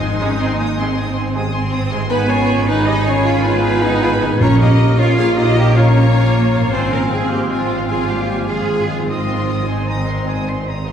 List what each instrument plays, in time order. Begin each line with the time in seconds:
Already playing: double bass section G#1, harp G#2 G#3 G#4 C5, french horn section D#3, clarinet G#3, violin section D#4, viola section D#4
0.00 cello section C4, oboe G#5, violin section C6, flute section C6
0.18 trombone section C3 G#3, cello section C#4, oboe G#5, flute section C6, violin section D#6
0.37 cello section C4, oboe G#5, flute section C6, violin section C6
0.57 cello section A#3, oboe G#5, flute section C6, violin section D#6
0.76 trombone section C3 G#3, cello section C4, oboe G#5, flute section C6, violin section C6
0.95 oboe G#5, flute section C6, violin section D#6
1.15 oboe G#5, violin section C6, flute section C6
1.34 trombone section C3 G#3, oboe G#5, flute section C6, violin section D#6
1.52 cello section C4, oboe G#5, flute section C6, violin section C6
1.71 oboe G#5, flute section C6, violin section D#6
1.90 harp G#2, trombone section C3 G#3, oboe G#5, violin section C6, flute section C6
1.96 harp G#3
2.01 harp G#4
2.05 clarinet D#4, harp B4
2.09 trombone section D#3 G#3, french horn section B3, cello section B3, viola section B4, violin section B4 B5, oboe G#5, flute section B5
2.29 french horn section C#4, clarinet F4, violin section C#5 G#5, viola section C#5
2.48 violin section B5
2.67 trombone section D#3 G#3, french horn section B3, clarinet D#4, cello section D#4, viola section B4, violin section B4 G#5, oboe G#5, flute section B5
2.85 french horn section D#4, clarinet G4, viola section D#5, violin section D#5 B5
3.05 french horn section C#4, clarinet F4, viola section C#5, violin section C#5 G#5
3.25 cello section F4, violin section B5
3.43 french horn section B3, clarinet D#4, viola section B4, violin section B4 G#5
3.64 violin section B5
3.82 cello section D#4, violin section G#5
4.03 cello section F4, violin section B5
4.21 harp A#2, cello section D#4, violin section G#5
4.27 harp C#4
4.31 harp F4
4.36 clarinet F4, harp A#4
4.40 double bass section A#1, timpani A#2, trombone section F3 A#3, cello section C#4, french horn section C#4, viola section C#5, violin section C#5, oboe F5, flute section A#5
4.60 french horn section D#4, clarinet G4, viola section D#5, violin section D#5 F5
4.79 violin section C#5
4.98 trombone section F3 A#3, french horn section C#4, clarinet F4, cello section F4, violin section C#5 F5, viola section C#5, oboe F5, flute section A#5
5.17 french horn section F4, clarinet G#4, violin section C#5 F5, viola section F5
5.36 french horn section D#4, clarinet G4, viola section D#5, violin section D#5 F5
5.55 cello section G4, violin section C#5
5.74 french horn section C#4, cello section F4, clarinet F4, viola section C#5, violin section C#5 F5
5.94 cello section C#4, violin section C#5
6.13 cello section A#3, violin section F5
6.34 violin section C#5
6.53 harp G#2, violin section F5
6.59 harp C4
6.63 harp F4
6.68 french horn section C4, cello section C4, harp C5, viola section C5
6.72 double bass section G#1, trombone section F3 C4, clarinet F4, violin section C5 G#5, oboe F5, flute section C6
6.91 french horn section A#3, clarinet C#4, viola section A#4, violin section A#4 F5
7.10 french horn section G#3, clarinet C4, violin section G#4 G#5, viola section G#4
7.29 french horn section G3, clarinet A#3, cello section C4, violin section G4 F5, viola section G4
7.49 french horn section F3, clarinet G#3, violin section F4 G#5, viola section F4
7.70 violin section F5
7.87 trombone section F3 C4, french horn section G#3, clarinet C4, cello section F4, viola section G#4, violin section G#4 G#5, oboe F5, flute section C6
8.08 french horn section G3, clarinet A#3, violin section G4 F5, viola section G4
8.28 violin section G#5
8.46 french horn section F3, trombone section F3 C4, clarinet G#3, viola section F4, violin section F4 F5, cello section G#4, oboe F5, flute section C6
8.68 violin section G#5
8.86 harp G#2, french horn section F3, clarinet G#3, viola section F4, violin section F4 F5
8.94 harp C4
8.99 harp D#4
9.04 french horn section F3, clarinet G#3, cello section C4, harp C5
9.08 trombone section D#3 C4, viola section F4, violin section F4 D#6, oboe D#5, flute section C6
9.30 violin section C6
9.48 violin section D#6
9.67 french horn section D#3, trombone section D#3 C4, clarinet G#3, violin section D#4 C6, viola section D#4, oboe G#5, flute section C6
9.88 oboe A#5, violin section D#6
10.08 violin section C6
10.28 oboe G#5, violin section D#6
10.46 violin section C6, oboe C6
10.67 oboe A#5, violin section D#6
10.87 violin section C6